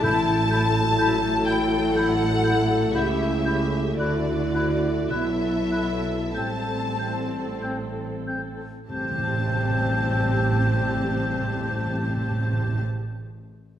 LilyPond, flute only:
\new Staff \with { instrumentName = "Flute" } { \time 4/4 \key a \dorian \tempo 4 = 49 g'''8 g'''8 g'''8 g'''8 g'''8 g'''8 g'''8 g'''8 | fis'''8 fis'''8 fis'''8 fis'''8 g'''8 g'''8 g'''8 g'''8 | g'''1 | }